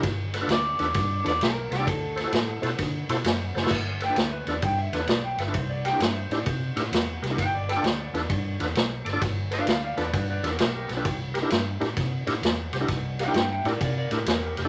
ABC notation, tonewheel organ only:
X:1
M:4/4
L:1/16
Q:"Swing" 1/4=131
K:Gmix
V:1 name="Tonewheel organ"
z2 [AB] [DFAB] z2 [DFAB] z3 [DFAB] z3 [AB] [DFAd] | z2 [Ac] [E^FAc] z2 [EFAc] z3 [EFAc] z3 [Ac] [EFAc] | z2 [AB] [DFAB] z2 [DFAB] z3 [DFAB] z3 [AB] [DFAB] | z2 [G_B] [DEGB] z2 [DEGc] z3 [DEGB] z3 [GB] [DEGB] |
z2 [AB] [DFAd] z2 [DFAB] z3 [DFAB] z3 [Ad] [DFAd] | z2 [AB] [DFAB] z2 [DFAB] z3 [DFAB] z3 [AB] [DFAB] | z2 [G_B] [DEGB] z2 [DEGB] z3 [DEGB] z3 [Gc] [DEGB] | z2 [G_B] [DEGB] z2 [DEGB] z3 [DEGB] z3 [GB] [DEGA] |]